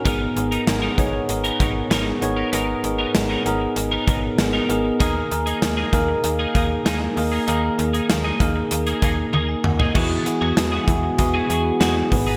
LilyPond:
<<
  \new Staff \with { instrumentName = "Tine electric piano" } { \time 4/4 \key e \lydian \tempo 4 = 97 << { r1 | r1 | r1 | r2. r16 gis''16 fis''16 dis''16~ |
dis''16 r2. r8. | } \\ { <b dis' gis' ais'>8 <b dis' gis' ais'>8 <b dis' gis' ais'>8 <b dis' gis' cis''>8 <b dis' gis' ais'>8 <b dis' gis' cis''>8 <b dis' gis' ais'>8 <b dis' gis' cis''>8 | <b dis' gis' ais'>8 <b dis' gis' ais'>8 <b dis' gis' ais'>8 <b dis' gis' ais'>8 <b dis' gis' ais'>8 <b dis' gis' ais'>8 <b dis' gis' ais'>8 <b dis' gis' ais'>8 | <ais dis' gis' ais'>8 <ais dis' gis' ais'>8 <ais dis' gis' ais'>8 <ais dis' gis' ais'>8 <ais dis' gis' ais'>8 <ais dis' gis' ais'>8 <ais dis' gis' ais'>8 <ais dis' gis' ais'>8 | <ais dis' gis' ais'>8 <ais dis' gis' ais'>8 <ais dis' gis' ais'>8 <ais dis' gis' ais'>8 <ais dis' gis' ais'>8 <ais dis' gis' ais'>8 r4 |
<b e' fis' gis'>8 <b e' fis' gis'>8 <b e' fis' gis'>8 <b e' fis' gis'>8 <b e' fis' gis'>8 <b e' fis' gis'>8 <b e' fis' gis'>8 <b dis' gis' b'>8 | } >> }
  \new Staff \with { instrumentName = "Tine electric piano" } { \clef bass \time 4/4 \key e \lydian gis,4. r2 r8 | gis,4. r2 r8 | dis4. r2 r8 | dis4. r2 r8 |
e4. r2 gis,8 | }
  \new Staff \with { instrumentName = "Clean electric guitar" } { \time 4/4 \key e \lydian <b dis' ais'>16 r8 <b dis' ais'>16 r16 <b dis' ais'>16 r8. <b dis' ais'>16 <b dis' ais'>16 r16 <b dis' ais'>16 r8 <b dis' ais'>16 | <b dis' ais'>16 r8 <b dis' ais'>16 r16 <b dis' ais'>16 r8. <b dis' ais'>16 <b dis' ais'>16 r8 <b dis' ais'>16 r8 | <ais dis' gis'>16 r8 <ais dis' gis'>16 r16 <ais dis' gis'>16 r8. <ais dis' gis'>16 <ais dis' gis'>16 r16 <ais dis' gis'>16 r8 <ais dis' gis'>16 | <ais dis' gis'>16 r8 <ais dis' gis'>16 r16 <ais dis' gis'>16 r8. <ais dis' gis'>16 <ais dis' gis'>16 r16 <ais dis' gis'>16 r8 <ais dis' gis'>16 |
<b fis' gis'>16 r8 <b fis' gis'>16 r16 <b fis' gis'>16 r8. <b fis' gis'>16 <b fis' gis'>16 r16 <b fis' gis'>16 r8 <b dis' gis'>16 | }
  \new Staff \with { instrumentName = "Brass ensemble" } { \time 4/4 \key e \lydian r1 | r1 | r1 | r1 |
<e gis fis'>2.~ <e gis fis'>8 <dis b gis'>8 | }
  \new Staff \with { instrumentName = "FM bass" } { \clef bass \time 4/4 \key e \lydian gis,,8 gis,,8 gis,,8 gis,,8 gis,,8 gis,,8 gis,,8 gis,,8 | gis,,8 gis,,8 gis,,8 gis,,8 gis,,8 gis,,8 gis,,8 gis,,8 | dis,8 dis,8 dis,8 dis,8 dis,8 dis,8 dis,8 dis,8 | dis,8 dis,8 dis,8 dis,8 dis,8 dis,8 dis,8 dis,8 |
e,8 r16 e,16 e,8 e,8 e,8 e,8 e,8 gis,,8 | }
  \new DrumStaff \with { instrumentName = "Drums" } \drummode { \time 4/4 <hh bd>8 hh16 hh16 <hh sn>8 <hh bd>8 hh16 hh16 <hh bd>8 <hh sn>8 hh8 | hh8 hh8 <hh sn>8 hh8 hh8 <hh bd>8 <hh sn>8 hh8 | <hh bd>8 hh16 hh16 <hh sn>8 <hh bd>8 hh8 <hh bd>8 <hh sn>8 hho8 | hh8 hh16 hh16 <hh sn>8 <hh bd>8 hh16 hh16 <hh bd>8 tommh8 toml16 tomfh16 |
<cymc bd>8 hh8 <hh sn>8 <hh bd>8 <hh bd>8 hh8 <hh sn>8 <hho bd>8 | }
>>